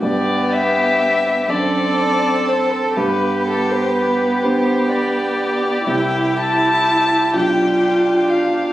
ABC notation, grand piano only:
X:1
M:6/8
L:1/8
Q:3/8=41
K:G
V:1 name="Grand piano"
[G,,B,DG]3 [F,,CDA]3 | G,,3 [B,DG]3 | [C,,CEG]3 [B,,,D=FG]3 |]